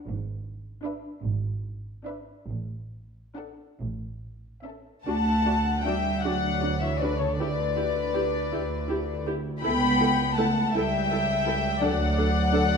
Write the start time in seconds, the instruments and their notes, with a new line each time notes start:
0.07 double bass section G#1, cello section G#2
0.83 viola section D4, violin section B4 E5
1.23 double bass section G#1, cello section G#2
2.05 viola section D4, violin section B4 E5
2.48 double bass section A1, cello section A2
3.35 viola section D4, violin section A4 F#5
3.80 double bass section A1, cello section A2
4.64 viola section C#4, violin section A4 E5
5.05 double bass section D2, cello section A3, viola section D4 F#4, violin section F#5 A5
5.46 viola section D4 F#4
5.84 cello section G3, viola section D4 F#4, violin section E5 G5
6.21 double bass section D2, cello section F#3, viola section F#4, violin section D5 F#5
6.25 viola section D4
6.62 viola section D4 F#4
6.81 cello section E3, violin section C#5 E5
7.00 cello section D3, viola section D4 F#4, violin section B4 D5
7.20 cello section C#3, violin section A4 C#5
7.38 double bass section D2, cello section D3, viola section E4 G4, violin section B4 D5
7.76 viola section E4 G4
8.14 viola section E4 G4
8.50 double bass section D2, viola section E4 G4
8.89 viola section E4 G4
9.26 viola section E4 G4
9.62 double bass section C#2, cello section B3, viola section E4 A4, violin section G5 B5
10.00 viola section E4 A4
10.36 cello section A3, viola section E4 A4, violin section F#5 A5
10.74 double bass section C#2, cello section G3, viola section E4 A4, violin section E5 G5
11.11 viola section E4 A4
11.46 viola section E4 A4
11.81 double bass section D2, cello section F#3, viola section D4 A4, violin section D5 F#5
12.17 viola section D4 A4
12.53 viola section D4 A4